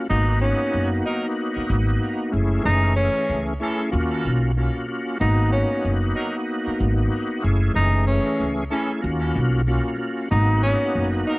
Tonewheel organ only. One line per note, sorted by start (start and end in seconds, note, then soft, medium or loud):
0.09 2.33 A#3 loud
0.09 2.33 B3 medium
0.09 2.33 D#4 medium
0.09 2.33 F#4 loud
2.32 2.62 A3 medium
2.32 2.62 C#4 medium
2.32 2.62 E4 medium
2.32 2.63 G#4 loud
2.63 3.53 E3 medium
2.63 3.53 A3 medium
2.63 3.53 C#4 medium
2.63 3.54 G#4 loud
3.60 3.90 A3 medium
3.60 3.90 C#4 medium
3.60 3.90 E4 medium
3.60 3.90 G#4 loud
3.91 4.51 A#3 medium
3.91 4.51 C#4 loud
3.91 4.51 F4 medium
3.91 4.52 F#4 loud
4.57 4.86 A#3 medium
4.57 4.86 C#4 medium
4.57 4.87 F4 medium
4.57 4.87 F#4 medium
4.87 5.17 A#3 medium
4.87 5.18 C#4 medium
4.87 5.18 F4 medium
4.87 5.18 F#4 medium
5.20 7.43 A#3 medium
5.20 7.43 B3 medium
5.20 7.44 D#4 medium
5.20 7.44 F#4 loud
7.42 7.72 A3 medium
7.42 7.73 C#4 medium
7.42 7.73 E4 medium
7.42 7.73 G#4 loud
7.73 8.64 E3 medium
7.73 8.63 A3 medium
7.73 8.64 C#4 medium
7.73 8.64 G#4 loud
8.70 9.00 A3 medium
8.70 9.00 C#4 medium
8.70 9.01 E4 medium
8.70 9.01 G#4 loud
9.01 9.62 A#3 medium
9.01 9.62 C#4 loud
9.01 9.62 F4 medium
9.01 9.62 F#4 loud
9.67 9.96 A#3 medium
9.67 9.97 C#4 medium
9.67 9.97 F4 medium
9.67 9.97 F#4 medium
9.97 10.28 A#3 medium
9.97 10.28 C#4 medium
9.97 10.28 F4 medium
9.97 10.28 F#4 medium
10.30 11.39 A#3 loud
10.30 11.39 B3 medium
10.30 11.39 D#4 medium
10.30 11.39 F#4 loud